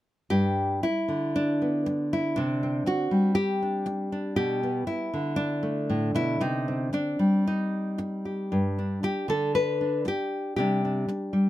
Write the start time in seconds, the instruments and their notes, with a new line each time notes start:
0.30 nylon-string guitar G2 G4
0.83 nylon-string guitar E4, muted nylon-string guitar stroke
1.08 nylon-string guitar D3
1.36 nylon-string guitar D4
1.62 nylon-string guitar B3
1.86 muted nylon-string guitar stroke
2.13 nylon-string guitar E4
2.36 nylon-string guitar C3 D4
2.63 nylon-string guitar C4
2.86 nylon-string guitar F#4, muted nylon-string guitar stroke
3.11 nylon-string guitar G3
3.35 nylon-string guitar G4
3.62 nylon-string guitar D4
3.86 muted nylon-string guitar stroke
4.12 nylon-string guitar D4
4.36 nylon-string guitar B2 G4
4.63 nylon-string guitar B3
4.87 nylon-string guitar E4, muted nylon-string guitar stroke
5.14 nylon-string guitar D3
5.36 nylon-string guitar D4
5.63 nylon-string guitar A3
5.90 nylon-string guitar A2
6.15 nylon-string guitar B2 E4
6.41 nylon-string guitar C3 D#4
6.68 nylon-string guitar C4
6.93 nylon-string guitar D4, muted nylon-string guitar stroke
7.19 nylon-string guitar G3
7.47 nylon-string guitar D#4
7.98 muted nylon-string guitar stroke
8.25 nylon-string guitar G4
8.52 nylon-string guitar G2
8.79 nylon-string guitar D4
9.03 nylon-string guitar G4, muted nylon-string guitar stroke
9.28 nylon-string guitar D3 A4
9.55 nylon-string guitar B4
9.81 nylon-string guitar D4
10.05 nylon-string guitar G4, muted nylon-string guitar stroke
10.56 nylon-string guitar C3 G3 D4 G4
10.85 nylon-string guitar D4
11.08 muted nylon-string guitar stroke
11.33 nylon-string guitar G3